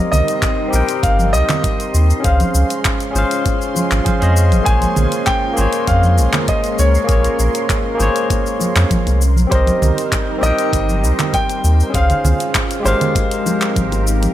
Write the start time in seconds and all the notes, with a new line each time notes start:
Already playing: G3 C4 D#4 G4 A#4 D#5 C6
0.12 C2 D#5, low conga, shaker
0.28 closed hi-hat, shaker
0.42 kick, clap, closed hi-hat, shaker
0.68 C4 G4
0.73 A#1 A#4 G5, high bongo, shaker
0.89 closed hi-hat, shaker
1.03 G1 F5, kick, closed hi-hat, shaker
1.20 high conga, shaker
1.33 C2 D#5, shaker
1.49 clap, closed hi-hat, high bongo, low conga, shaker
1.64 kick, closed hi-hat, shaker
1.80 closed hi-hat, shaker
1.94 D#2, shaker
2.10 shaker
2.20 C#4 G#4
2.24 C#2 G#3 C#4 F4 C5 F5, kick, closed hi-hat, shaker
2.40 closed hi-hat, high conga, shaker
2.54 C#2, shaker
2.70 closed hi-hat, shaker
2.85 kick, clap, closed hi-hat, shaker
3.00 closed hi-hat, shaker
3.11 G#1 C#4 G#4
3.15 C5 F5, high bongo, shaker
3.31 closed hi-hat, shaker
3.45 kick, closed hi-hat, high bongo, shaker
3.62 shaker
3.75 high bongo, high conga, shaker
3.91 G#1, clap, closed hi-hat, shaker
4.04 C#4 G#4 C5 F5, kick, closed hi-hat, high conga, shaker
4.20 F2 C#4 G#4 C5 D#5, closed hi-hat, high bongo, shaker
4.37 shaker
4.52 G#1, closed hi-hat, high conga, shaker
4.62 A#3 G#4 G#5
4.66 A#1 A#4 C5 C#5, kick, closed hi-hat, shaker
4.82 closed hi-hat, high conga, shaker
4.96 A#1, low conga, shaker
5.12 closed hi-hat, shaker
5.27 G5, kick, clap, closed hi-hat, shaker
5.53 A#3 G#4, high bongo
5.57 G#1 C5 C#5, shaker
5.73 closed hi-hat, shaker
5.87 F2 F5, kick, closed hi-hat, shaker
6.03 high conga, shaker
6.18 A#1, shaker
6.33 clap, closed hi-hat, high bongo, low conga, shaker
6.48 D#5, kick, closed hi-hat, shaker
6.64 closed hi-hat, shaker
6.79 C#2 C#5, shaker
6.95 shaker
7.04 A#3 G#4
7.09 A#1 A#4 C#5, kick, closed hi-hat, shaker
7.24 closed hi-hat, shaker
7.39 A#1, shaker
7.55 closed hi-hat, shaker
7.69 kick, clap, closed hi-hat, shaker
7.95 A#3 G#4
8.00 G#1 C5 C#5, high bongo, shaker
8.16 closed hi-hat, shaker
8.30 kick, closed hi-hat, high bongo, shaker
8.46 shaker
8.60 high bongo, high conga, shaker
8.76 F2, clap, closed hi-hat, shaker
8.91 kick, closed hi-hat, high conga, shaker
9.07 C2, closed hi-hat, high bongo, shaker
9.21 G3 D#4 A#4 C5, shaker
9.36 A#1, high conga, shaker
9.47 C4 G4
9.51 C2 A#4 C5 D#5, kick, closed hi-hat, shaker
9.67 closed hi-hat, high conga, shaker
9.82 C2, low conga, shaker
9.98 closed hi-hat, shaker
10.12 kick, clap, closed hi-hat, shaker
10.38 A#1 C4 G4, high bongo
10.43 A#4 D#5 G5, shaker
10.59 closed hi-hat, shaker
10.73 G1, kick, closed hi-hat, shaker
10.89 high conga, shaker
11.03 C2, shaker
11.19 clap, closed hi-hat, high bongo, low conga, shaker
11.34 G5, kick, closed hi-hat, shaker
11.50 closed hi-hat, shaker
11.64 D#2, shaker
11.80 shaker
11.90 G#3 C#4 F4 G#4
11.94 C#2 C5 F5, kick, closed hi-hat, shaker
12.10 closed hi-hat, low conga, shaker
12.24 C#2, low conga, shaker
12.40 closed hi-hat, shaker
12.55 kick, clap, closed hi-hat, shaker
12.71 closed hi-hat, shaker
12.80 G#3 G4
12.84 G#1 A#4 C5 F5, high bongo, shaker
13.01 closed hi-hat, low conga, shaker
13.15 C4 D#4 G4 A#4, kick, closed hi-hat, high bongo, shaker
13.31 closed hi-hat, shaker
13.46 high bongo, high conga, shaker
13.62 clap, closed hi-hat, shaker
13.76 G#1, kick, closed hi-hat, high conga, shaker
13.92 closed hi-hat, high bongo, shaker
14.07 shaker
14.23 closed hi-hat, high conga, shaker